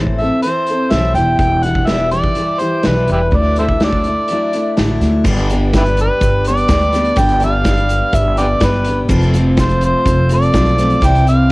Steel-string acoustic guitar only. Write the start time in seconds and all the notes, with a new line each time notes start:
Already playing: A2 E3 C4 E4 A4
0.20 C4 E4 A4
0.45 E3 C4 E4 A4
0.70 C4 E4 A4
0.93 A2 E3 C4 E4 A4
1.17 E2 B2 E3 G3 E4 G4
1.64 E3 G3 E4 G4
1.88 E2 B2 E3 G3 E4 G4
2.11 E3 G3 E4 G4
2.36 E3 G3 E4 G4
2.60 E3 G3 E4 G4
2.83 E2 B2 E3 G3 E4 G4
3.33 D3 F#3 A3 D4 E4
3.58 A3 D4 E4
3.81 D3 F#3 A3 D4 E4
4.07 A3 D4 E4
4.31 F#3 A3 D4 E4
4.54 A3 D4 E4
4.77 D3 F#3 A3 D4 E4
5.26 G2 D3 G3 B3 D4 G4
5.51 G3 B3 D4 G4
5.76 G3 B3 D4 G4
6.48 G3 B3 D4 G4
6.71 G3 B3 D4 G4
6.94 G3 B3 D4 G4
7.17 G2 D3 G3 B3 D4 G4
7.42 G3 B3 D4 G4
7.66 G3 B3 D4 G4
8.38 G3 B3 D4 G4
8.61 G3 B3 D4 G4
8.86 G3 B3 D4 G4
9.08 F2 C3 F3 A3 C4 F4
9.34 F3 A3 C4 F4
9.57 F3 A3 C4 F4
10.29 F3 A3 C4 F4
10.52 F3 A3 C4 F4
10.78 F3 A3 C4 F4
11.01 C3 E3 G3 C4 E4
11.26 G3 C4 E4